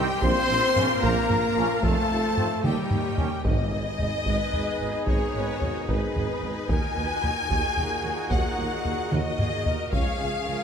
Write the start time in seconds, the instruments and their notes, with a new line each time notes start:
Already playing: cello section G3, string section C4 G4 C5 D#5, viola section G4, trumpet G4, violin section G5
0.20 double bass section A#1, tuba A#1, string section A#3 F4 A#4 F5, cello section C4, french horn section C4, viola section C5, trumpet C5, violin section C6, taiko
0.49 double bass section A#1, tuba A#1
0.76 double bass section A#1, tuba A#1, trombone section F3 C#4, taiko low-mid
1.02 double bass section A#1, tuba A#1, french horn section A#3, cello section A#3, viola section A#4, trumpet A#4, violin section A#5, taiko
1.30 double bass section A#1, tuba A#1, taiko low-mid
1.57 double bass section A#1, tuba A#1, trombone section F3 C#4
1.82 tuba F1, double bass section F2, french horn section A3, cello section A3, string section C4 C5, viola section A4, trumpet A4, violin section A5, taiko
2.10 tuba F1, double bass section F2
2.35 tuba F1, double bass section F2, trombone section F3 C4, taiko low-mid
2.63 double bass section D#2, tuba D#2, french horn section G3, cello section G3, string section A#3 A#4 C#5 D#5, viola section G4, trumpet G4, violin section G5, taiko mid
2.91 tuba D#2, double bass section D#2, taiko low-mid
3.16 double bass section D#2, trombone section D#3 C#4, taiko low
3.20 tuba D#2
3.44 double bass section G#1, tuba G#1, cello section G#2, timpani G#2, trombone section G#2 D#3, french horn section B3 D#4, string section D#4 G#4 B4 D#5, trumpet G#4, violin section D#5, taiko
3.72 double bass section G#1, tuba G#1, cello section G#2
3.99 double bass section G#1, tuba G#1, cello section G#2, taiko low
4.25 double bass section G#1, tuba G#1, cello section G#2, viola section B4, taiko
4.53 double bass section G#1, tuba G#1, cello section G#2, taiko low
4.79 double bass section G#1, tuba G#1, cello section G#2
5.07 double bass section G#1, tuba G#1, cello section G#2, viola section G#4, violin section C#5, taiko
5.34 double bass section G#1, tuba G#1, cello section G#2, viola section B4
5.62 double bass section G#1, tuba G#1, cello section G#2, viola section F#4, taiko low
5.88 double bass section G#1, tuba G#1, cello section G#2, viola section G#4, violin section B4, taiko
6.15 double bass section G#1, tuba G#1, cello section G#2, taiko low
6.42 double bass section G#1, tuba G#1, cello section G#2
6.68 tuba D#2, cello section D#2, double bass section D#2, trombone section A#2 D#3, french horn section A#3 D#4, trumpet F#4, string section F#4 A#4, viola section A#4, violin section G#5, taiko
6.96 cello section D#2, double bass section D#2, tuba D#2, viola section B4
7.23 cello section D#2, double bass section D#2, tuba D#2, viola section A#4, taiko low
7.50 double bass section D#2, cello section D#2, tuba D#2, viola section G#4, taiko
7.77 cello section D#2, double bass section D#2, tuba D#2, taiko low
8.04 double bass section D#2, tuba D#2, cello section D#2
8.30 double bass section D#2, tuba D#2, cello section D#2, violin section F#5, taiko
8.58 cello section D#2, double bass section D#2, tuba D#2
8.84 cello section D#2, tuba D#2, double bass section D#2, taiko low
9.12 tuba D#2, cello section D#2, double bass section D#2, viola section F#4, violin section D#5, taiko mid
9.39 tuba D#2, cello section D#2, double bass section D#2, viola section G#4, taiko low-mid
9.66 cello section D#2, tuba D#2, double bass section D#2, viola section A#4, taiko low
9.92 tuba C#2, cello section C#2, double bass section C#2, trombone section C#3 F3, french horn section G#3 C#4, string section C#4 G#4 C#5 G#5, trumpet G#4, viola section C#5, violin section F5, taiko
10.19 cello section C#2, double bass section C#2, tuba C#2, viola section G#4
10.46 cello section C#2, tuba C#2, double bass section C#2, viola section A#4